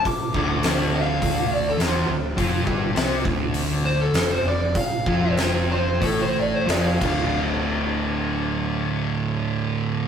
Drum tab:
CC |--------|--------|-------x|--------|
HH |o-o-o-o-|o-o-o-o-|o-o-o-o-|--------|
SD |--o---o-|--o---o-|--o---o-|--------|
BD |oo--o---|oo-o----|oo--o--o|--------|